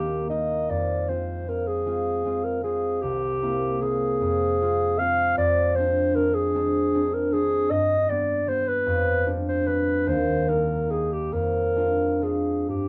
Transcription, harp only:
0.00 0.72 D#2 soft
0.00 0.28 A#3 soft
0.00 0.29 D#4 soft
0.00 0.29 G4 soft
0.29 0.72 A#3 soft
0.29 0.72 D#4 soft
0.29 0.72 G4 soft
0.69 3.06 F2 soft
1.08 1.46 G#3 soft
1.08 1.47 C4 soft
1.08 1.47 F4 soft
1.48 1.85 G#3 soft
1.48 1.85 C4 soft
1.48 1.86 F4 soft
1.86 2.24 G#3 soft
1.86 2.25 C4 soft
1.86 2.25 F4 soft
2.25 2.62 G#3 soft
2.25 2.63 C4 soft
2.25 2.63 F4 soft
2.63 3.05 G#3 soft
2.63 3.41 C4 soft
2.63 3.06 F4 soft
3.03 4.25 C2 soft
3.42 3.80 A#3 soft
3.42 3.81 C4 soft
3.42 3.81 E4 soft
3.81 4.25 A#3 soft
3.81 4.60 C4 soft
3.81 4.25 E4 soft
4.21 5.36 F2 soft
4.61 4.99 G#3 soft
4.61 4.99 C4 soft
4.61 4.99 F4 soft
5.00 5.74 G#3 soft
5.00 5.76 C4 soft
5.00 7.75 F4 soft
5.37 7.74 F2 soft
5.75 6.14 G#3 soft
5.75 6.15 C4 soft
5.79 6.15 D4 soft
6.15 6.53 G#3 soft
6.15 6.54 C4 soft
6.15 6.54 D4 soft
6.54 6.93 G#3 soft
6.54 6.93 C4 soft
6.54 6.94 D4 soft
6.94 7.31 G#3 soft
6.94 7.32 C4 soft
6.94 7.32 D4 soft
7.32 7.74 G#3 soft
7.32 7.75 C4 soft
7.32 9.25 D4 soft
7.70 8.89 G2 soft
8.09 8.46 G3 soft
8.09 8.46 B3 soft
8.09 8.47 G4 soft
8.47 9.25 G3 soft
8.47 10.10 B3 soft
8.47 9.26 G4 soft
8.86 10.10 F2 medium
9.26 9.64 G3 soft
9.26 9.65 D4 soft
9.26 9.65 G4 soft
9.66 10.46 G3 soft
9.66 10.10 D4 soft
9.66 10.47 G4 soft
10.06 11.35 D#2 medium
10.47 10.89 G3 soft
10.47 10.89 D#4 soft
10.47 10.90 G4 soft
10.90 11.36 G3 soft
10.90 11.36 D#4 soft
10.90 11.36 G4 soft
11.32 12.73 F2 soft
11.75 12.20 G#3 soft
11.75 12.21 D4 soft
11.75 12.21 F4 soft
12.21 12.73 G#3 soft
12.21 12.73 D4 soft
12.21 12.73 F4 soft
12.68 12.88 G2 soft

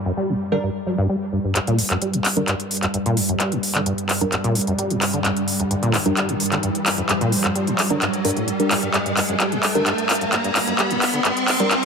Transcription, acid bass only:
0.06 0.12 F#2 medium
0.17 0.31 G3 medium
0.29 0.35 G2 loud
0.52 0.58 D3 medium
0.63 0.70 G2 medium
0.86 0.96 F#3 medium
0.98 1.07 G2 loud
1.09 1.16 G3 medium
1.33 1.39 G2 medium
1.44 1.54 G2 medium
1.56 1.60 G2 medium
1.67 1.80 A#2 loud
1.79 1.83 G2 medium
1.91 1.97 F#2 medium
2.02 2.15 G3 medium
2.14 2.20 G2 loud
2.37 2.43 D3 medium
2.48 2.54 G2 medium
2.83 2.87 F#2 medium
2.94 2.98 G2 medium
3.06 3.19 A#2 loud
3.17 3.21 G2 medium
3.29 3.35 F#2 medium
3.40 3.54 G3 medium
3.52 3.58 G2 loud
3.75 3.81 D3 medium
3.86 3.93 G2 medium
4.21 4.25 F#2 medium
4.32 4.36 G2 medium
4.44 4.57 A#2 loud
4.55 4.59 G2 medium
4.67 4.74 F#2 medium
4.79 4.92 G3 medium
4.90 4.97 G2 loud
5.14 5.20 D3 medium
5.25 5.31 G2 medium
5.60 5.63 F#2 medium
5.71 5.75 G2 medium
5.83 5.95 A#2 loud
5.94 5.98 G2 medium
6.06 6.12 F#2 medium
6.17 6.30 G3 medium
6.29 6.35 G2 loud
6.52 6.58 D3 medium
6.63 6.70 G2 medium
6.98 7.02 F#2 medium
7.09 7.13 G2 medium
7.21 7.34 A#2 loud
7.32 7.36 G2 medium
7.44 7.50 F#2 medium
7.55 7.69 G3 medium
7.67 7.74 G2 loud
7.90 7.97 D3 medium
8.02 8.08 G2 medium
8.25 8.31 G2 loud
8.37 8.49 A2 medium
8.48 8.52 G2 medium
8.71 8.75 G2 medium
8.83 8.89 G2 medium
8.94 8.98 G2 medium
9.06 9.12 G2 medium
9.17 9.21 G2 medium
9.29 9.35 F#2 medium
9.40 9.53 G3 medium
9.52 9.58 G2 loud
9.75 9.81 D3 medium
9.86 9.93 G2 medium
10.21 10.25 F#2 medium
10.32 10.36 G2 medium
10.44 10.50 G2 medium
10.55 10.59 G2 medium
10.67 10.74 F#2 medium
10.79 10.92 G3 medium
10.90 10.97 G2 loud
11.13 11.20 D3 medium
11.25 11.31 G2 medium
11.60 11.63 F#2 medium
11.71 11.75 G2 medium

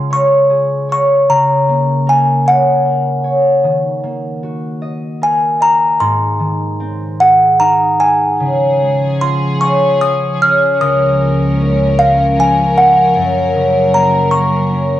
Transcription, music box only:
0.13 0.91 C#6 medium
0.92 1.28 C#6 medium
1.30 2.11 A#5 medium
2.09 2.27 G#5 medium
2.48 3.31 F#5 medium
5.23 5.40 G#5 medium
5.62 5.98 A#5 medium
6.00 7.23 C6 medium
7.20 7.57 F#5 medium
7.60 7.97 A#5 medium
8.00 8.76 G#5 medium
9.21 9.62 C6 medium
9.61 9.98 C#6 medium
10.01 10.42 D#6 loud
10.42 10.82 F6 medium
10.81 12.02 D#6 loud
11.99 12.39 F5 medium
12.40 12.78 G#5 medium
12.78 13.97 F#5 medium
13.94 14.34 A#5 medium
14.31 15.00 C#6 medium

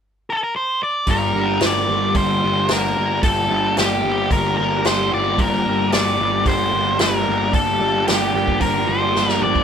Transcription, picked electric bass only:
1.08 1.32 G1 medium
1.34 1.59 G1 medium
1.62 1.86 G1 medium
1.89 2.14 G1 medium
2.15 2.40 G1 medium
2.44 2.68 G1 medium
2.71 2.95 G1 medium
2.98 3.22 G1 medium
3.23 3.48 G1 medium
3.51 3.75 G1 medium
3.78 4.02 G1 medium
4.04 4.29 G1 medium
4.31 4.56 G1 medium
4.59 4.83 G1 medium
4.86 5.10 G1 medium
5.13 5.37 G1 medium
5.39 5.63 G1 medium
5.66 5.90 G1 medium
5.94 6.18 G1 medium
6.20 6.44 G1 medium
6.47 6.71 G1 medium
6.74 6.98 G1 medium
7.00 7.25 G1 medium
7.29 7.53 G1 medium
7.54 7.79 G1 medium
7.81 8.06 G1 medium
8.09 8.33 G1 medium
8.35 8.59 G1 medium
8.62 8.86 G1 medium
8.88 9.13 G1 medium
9.15 9.40 G1 medium
9.42 9.64 G1 medium

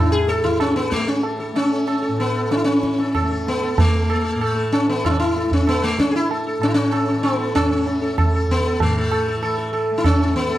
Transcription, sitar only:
0.00 0.14 E4 medium
0.00 0.27 A4 soft
0.12 0.29 G#4 loud
0.29 0.45 A4 loud
0.44 0.60 E4 loud
0.61 0.76 C#4 loud
0.76 0.93 B3 medium
0.91 1.09 A3 medium
1.07 1.23 C#4 medium
1.24 1.39 A4 soft
1.40 1.70 A4 soft
1.56 2.20 C#4 medium
1.87 2.01 A4 soft
2.03 2.33 A4 soft
2.20 2.51 B3 medium
2.35 2.65 A4 soft
2.52 2.56 C#4 medium
2.57 2.64 E4 medium
2.64 3.48 C#4 medium
3.00 3.14 A4 soft
3.15 3.30 A4 soft
3.31 3.60 A4 soft
3.48 3.80 B3 medium
3.63 3.92 A4 soft
3.80 4.76 A3 medium
4.10 4.23 A4 soft
4.24 4.40 A4 soft
4.41 4.55 A4 soft
4.56 4.86 A4 soft
4.72 4.89 C#4 medium
4.89 5.05 B3 medium
5.06 5.10 E4 loud
5.10 5.17 C#4 medium
5.20 5.53 E4 medium
5.37 5.66 A4 soft
5.53 5.68 C#4 medium
5.69 5.84 B3 medium
5.84 5.99 A3 medium
5.99 6.11 C#4 loud
6.11 6.15 G#4 medium
6.16 6.30 E4 medium
6.31 6.45 A4 soft
6.47 6.75 A4 soft
6.63 6.67 C#4 loud
6.68 6.74 E4 medium
6.74 7.23 C#4 loud
6.92 7.07 A4 soft
7.09 7.38 A4 soft
7.23 7.55 B3 medium
7.39 7.69 A4 soft
7.55 8.51 C#4 loud
7.86 8.01 A4 soft
8.02 8.16 A4 soft
8.18 8.33 A4 soft
8.35 8.63 A4 soft
8.51 8.79 B3 loud
8.66 8.94 A4 soft
8.82 9.71 A3 medium
8.98 9.11 A4 soft
9.12 9.27 A4 soft
9.28 9.41 A4 soft
9.42 9.57 A4 soft
9.58 9.72 A4 soft
9.73 10.02 A4 soft
9.98 10.04 E4 medium
10.06 10.35 C#4 loud
10.20 10.49 A4 soft
10.36 10.58 B3 medium
10.51 10.58 A4 soft

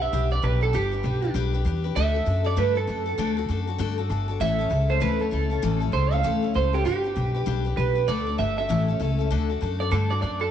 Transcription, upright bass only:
0.00 0.12 B1 medium
0.13 0.42 B1 loud
0.43 0.73 B1 loud
0.74 1.03 G1 loud
1.04 1.34 B1 loud
1.35 1.64 B1 loud
1.65 1.95 E2 loud
1.96 2.25 D2 medium
2.27 2.56 F#2 loud
2.57 2.86 G2 loud
2.88 3.17 F#2 medium
3.18 3.48 D2 medium
3.49 3.78 F#2 medium
3.79 4.09 G2 medium
4.10 4.39 G1 medium
4.40 4.70 A1 medium
4.71 5.00 C#2 loud
5.01 5.31 D2 medium
5.32 5.62 C#2 medium
5.63 5.93 A1 medium
5.93 6.23 C#2 medium
6.24 6.54 D2 loud
6.55 6.85 C#2 medium
6.86 7.15 G1 medium
7.17 7.46 B1 loud
7.47 7.76 B1 medium
7.78 8.07 B1 medium
8.08 8.38 D2 loud
8.39 8.68 G1 medium
8.70 8.99 A1 loud
9.00 9.29 C#2 medium
9.31 9.60 D2 medium
9.62 9.91 F#2 medium
9.92 10.21 G2 medium
10.23 10.51 F#2 loud

